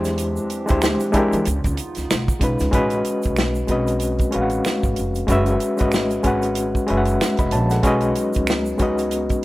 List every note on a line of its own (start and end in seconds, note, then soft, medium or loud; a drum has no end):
0.00 0.37 E2 loud
0.00 1.44 E3 medium
0.00 0.55 G#3 medium
0.00 1.44 G#3 medium
0.00 1.44 C4 medium
0.00 0.56 D4 medium
0.00 1.44 D4 medium
0.00 0.56 E4 medium
0.00 0.57 G4 medium
0.00 1.44 G4 medium
0.00 0.57 C5 medium
0.04 snare soft
0.04 closed hi-hat soft
0.04 shaker soft
0.18 closed hi-hat medium
0.18 shaker medium
0.36 shaker soft
0.50 closed hi-hat medium
0.50 shaker medium
0.66 1.07 G#3 medium
0.66 1.08 D4 medium
0.66 1.08 E4 medium
0.66 1.09 G4 medium
0.66 closed hi-hat soft
0.66 shaker medium
0.70 0.95 D2 medium
0.70 1.09 C5 medium
0.70 kick loud
0.82 finger snap medium
0.82 snare loud
0.82 shaker medium
1.00 closed hi-hat soft
1.00 shaker medium
1.12 1.29 E2 medium
1.12 1.45 G#3 medium
1.12 1.45 D4 medium
1.12 1.46 E4 medium
1.12 1.47 G4 medium
1.12 kick medium
1.12 closed hi-hat medium
1.12 shaker soft
1.17 1.47 A#4 medium
1.33 1.44 E3 loud
1.33 closed hi-hat medium
1.33 shaker soft
1.45 1.61 C#2 medium
1.45 2.72 C#3 medium
1.45 2.72 B3 medium
1.45 2.72 D#4 medium
1.45 2.72 F4 medium
1.45 closed hi-hat medium
1.45 shaker medium
1.64 1.76 C#2 loud
1.64 kick medium
1.64 closed hi-hat soft
1.64 shaker medium
1.77 closed hi-hat medium
1.77 shaker soft
1.95 2.07 C#2 medium
1.95 snare soft
1.95 closed hi-hat soft
1.95 shaker soft
2.11 2.25 B1 medium
2.11 finger snap medium
2.11 snare loud
2.11 shaker medium
2.28 kick medium
2.28 shaker soft
2.40 2.56 B1 medium
2.40 2.69 G#3 medium
2.40 2.69 C#4 medium
2.40 2.70 D#4 medium
2.40 2.70 F4 medium
2.40 kick loud
2.40 closed hi-hat medium
2.40 shaker soft
2.44 2.71 B4 medium
2.59 2.71 C#2 medium
2.59 snare soft
2.59 closed hi-hat medium
2.59 shaker soft
2.71 2.99 A1 medium
2.71 3.57 G#3 medium
2.71 3.58 C#4 medium
2.71 3.58 F#4 medium
2.71 3.59 B4 medium
2.71 kick loud
2.71 closed hi-hat medium
2.71 shaker soft
2.76 3.59 D#5 medium
2.90 closed hi-hat soft
2.90 shaker soft
3.05 closed hi-hat medium
3.05 shaker soft
3.22 kick medium
3.22 closed hi-hat soft
3.22 shaker medium
3.27 3.61 B1 medium
3.36 finger snap medium
3.36 snare loud
3.36 shaker soft
3.55 shaker soft
3.68 4.20 B1 medium
3.68 4.25 G#3 medium
3.68 3.76 C4 medium
3.68 4.26 F#4 medium
3.68 4.27 B4 medium
3.68 kick medium
3.68 closed hi-hat medium
3.68 shaker soft
3.72 4.29 C#4 medium
3.72 4.27 D#5 medium
3.87 closed hi-hat soft
3.87 shaker soft
4.00 closed hi-hat medium
4.00 shaker medium
4.19 kick medium
4.19 closed hi-hat soft
4.19 shaker soft
4.31 5.17 G#3 medium
4.31 5.17 C#4 medium
4.31 5.18 F#4 medium
4.31 5.18 B4 medium
4.31 closed hi-hat medium
4.35 4.59 A1 medium
4.35 4.42 F5 medium
4.42 5.22 F#5 medium
4.50 closed hi-hat soft
4.50 shaker soft
4.65 finger snap medium
4.65 snare medium
4.65 shaker medium
4.83 4.95 G#1 medium
4.83 kick medium
4.83 shaker soft
4.96 5.23 F1 medium
4.96 closed hi-hat medium
4.96 shaker soft
5.15 closed hi-hat soft
5.15 shaker soft
5.27 5.54 F#1 loud
5.27 5.71 G#3 loud
5.27 5.71 C#4 medium
5.27 5.72 F#4 medium
5.27 5.72 B4 medium
5.27 kick medium
5.27 closed hi-hat medium
5.27 shaker medium
5.32 5.73 E5 loud
5.46 closed hi-hat soft
5.46 shaker soft
5.60 closed hi-hat medium
5.60 shaker medium
5.77 6.18 G#3 medium
5.77 6.18 C#4 medium
5.77 6.19 F#4 medium
5.77 6.20 B4 medium
5.77 closed hi-hat soft
5.77 shaker medium
5.81 6.17 G#1 medium
5.81 6.20 D#5 medium
5.81 kick medium
5.92 finger snap soft
5.92 snare loud
5.92 shaker medium
6.11 closed hi-hat soft
6.11 shaker soft
6.23 6.76 G#1 medium
6.23 6.80 G#3 medium
6.23 6.81 C#4 medium
6.23 6.81 F#4 medium
6.23 6.82 B4 medium
6.23 kick medium
6.23 closed hi-hat medium
6.23 shaker soft
6.27 6.82 F#5 medium
6.42 closed hi-hat soft
6.42 shaker soft
6.55 closed hi-hat medium
6.55 shaker medium
6.75 kick medium
6.75 shaker soft
6.87 7.15 F#1 medium
6.87 7.72 G#3 medium
6.87 7.73 C#4 medium
6.87 7.73 F#4 medium
6.87 7.21 B4 medium
6.87 closed hi-hat medium
6.91 6.97 E5 medium
6.97 7.25 F#5 medium
7.05 closed hi-hat soft
7.05 shaker soft
7.21 finger snap medium
7.21 snare loud
7.21 shaker medium
7.37 7.53 E1 medium
7.37 7.52 D#5 medium
7.37 7.52 B5 medium
7.37 kick medium
7.37 closed hi-hat soft
7.37 shaker soft
7.51 7.78 A#1 medium
7.51 7.70 C#5 soft
7.51 7.69 A5 medium
7.51 closed hi-hat medium
7.51 shaker soft
7.70 8.01 A4 medium
7.70 8.01 F#5 medium
7.70 snare soft
7.70 closed hi-hat soft
7.70 shaker soft
7.83 8.10 B1 medium
7.83 9.45 F#3 medium
7.83 8.68 G#3 loud
7.83 9.45 B3 medium
7.83 8.69 C#4 loud
7.83 9.45 D#4 medium
7.83 8.69 F#4 medium
7.83 8.70 B4 loud
7.83 kick medium
7.83 closed hi-hat medium
7.83 shaker medium
7.87 8.70 D#5 loud
8.01 closed hi-hat soft
8.01 shaker soft
8.15 closed hi-hat medium
8.15 shaker medium
8.33 kick medium
8.33 closed hi-hat soft
8.33 shaker soft
8.37 8.72 C#2 medium
8.47 finger snap medium
8.47 snare loud
8.47 shaker medium
8.66 shaker soft
8.78 9.31 C#2 medium
8.78 9.35 G#3 medium
8.78 9.36 C#4 medium
8.78 9.12 F#4 medium
8.78 9.12 B4 medium
8.78 kick medium
8.78 closed hi-hat medium
8.78 shaker soft
8.83 9.13 D#5 medium
8.98 closed hi-hat soft
8.98 shaker soft
9.11 closed hi-hat medium
9.11 shaker medium
9.29 kick medium
9.29 closed hi-hat soft
9.29 shaker soft